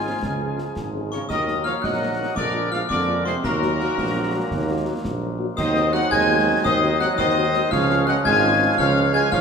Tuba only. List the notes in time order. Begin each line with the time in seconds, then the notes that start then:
Already playing: G#1
0.22 C#2
0.76 G#1
1.29 D#2
1.83 A#1
2.36 A#1
2.90 F2
3.44 D#2
3.97 A#1
4.51 D#2
5.04 A#1
5.57 D#2
6.11 D#2
6.64 D#2
7.18 D#2
7.71 C#2
8.25 G#1
8.78 C#2
9.32 G#1